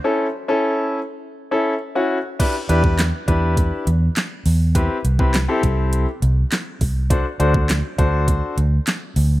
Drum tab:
CC |----------------|x---------------|----------------|----------------|
HH |----------------|x-x-x-x-x-x-x-o-|x-x-x-x-x-x-x-o-|x-x-x-x-x-x-x-o-|
CP |----------------|----x-------x---|----x-------x---|----x-------x---|
SD |----------------|----o-------o---|----o-------o---|----o-------o---|
BD |----------------|o--o--o-o-------|o--o--o-------o-|o--o--o-o-------|